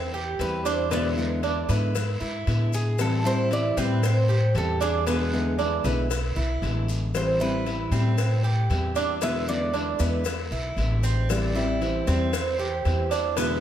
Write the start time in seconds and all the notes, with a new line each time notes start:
Already playing: E2 C4
0.14 G4, maracas
0.39 E2 E3 G3 C4 E4 B4, cowbell, short guiro, maracas
0.65 D4 C5, cowbell, short guiro, maracas
0.91 B2 D3 G#3 B3 E4 D5, cowbell, long guiro, maracas
1.17 D3 G#3 B3 E4, maracas
1.43 D3 G#3 B3 D4 E4, cowbell, short guiro, maracas
1.69 G#2 D3 G#3 B3 E4 B4, cowbell, short guiro, maracas
1.95 muted steel-string acoustic guitar stroke, cowbell, long guiro, maracas
2.21 G#2 E4, maracas
2.47 A2 D3 G#3 B3 E4, cowbell, short guiro, maracas
2.73 G#4, short guiro, maracas
2.99 E3 G3 C4 E4 A4, cowbell, long guiro, maracas
3.24 G3 C4 E4 C5, maracas
3.51 E3 G3 C4 E4 D5, cowbell, short guiro, maracas
3.77 A2 G3 C4 E4 B4, cowbell, short guiro, maracas
4.03 C5, muted steel-string acoustic guitar stroke, cowbell, long guiro, maracas
4.29 G4, maracas
4.55 E2 E3 G3 C4 E4 A4, cowbell, short guiro, maracas
4.80 D4 G#4, cowbell, short guiro, maracas
5.07 B2 D3 G#3 B3 E4, cowbell, long guiro, maracas
5.33 D3 G#3 B3 E4, maracas
5.59 D3 G#3 B3 D4 E4, cowbell, short guiro, maracas
5.84 B1 D3 G#3 B3 E4 B4, cowbell, short guiro, maracas
6.10 muted steel-string acoustic guitar stroke, cowbell, long guiro, maracas
6.36 B1 E4, maracas
6.62 A1 D3 G#3 B3 E4, cowbell, short guiro, maracas
6.88 short guiro, maracas
7.14 E3 G3 C4 E4 C5, cowbell, long guiro, maracas
7.40 G3 C4 E4 B4, maracas
7.66 E3 G3 C4, cowbell, short guiro, maracas
7.91 A2 G3 C4 E4, cowbell, short guiro, maracas
8.18 muted steel-string acoustic guitar stroke, cowbell, long guiro, maracas
8.44 G4, maracas
8.70 E2 E3 G3 C4 E4, cowbell, short guiro, maracas
8.96 D4, cowbell, short guiro, maracas
9.21 B2 D3 G#3 B3 E4 E5, cowbell, long guiro, maracas
9.48 D3 G#3 B3 E4 D5, maracas
9.74 D3 G#3 B3 D4 E4, cowbell, short guiro, maracas
9.99 E2 D3 G#3 B3 E4 B4, cowbell, short guiro, maracas
10.25 muted steel-string acoustic guitar stroke, cowbell, long guiro, maracas
10.51 B1 E4, maracas
10.77 A1 D3 G#3 B3 E4, cowbell, short guiro, maracas
11.03 C4, short guiro, maracas
11.29 E3 G3 C4 E4 D5, cowbell, long guiro, maracas
11.55 G3 C4 E4, maracas
11.81 E3 G3 C4 E4 C5, cowbell, short guiro, maracas
12.07 E2 G3 C4 E4, cowbell, short guiro, maracas
12.33 muted steel-string acoustic guitar stroke, cowbell, long guiro, maracas
12.59 G4, maracas
12.85 E2 E3 G3 C4 E4, cowbell, short guiro, maracas
13.11 D4, cowbell, short guiro, maracas
13.37 B2 D3 G#3 B3 E4 B4, cowbell, long guiro, maracas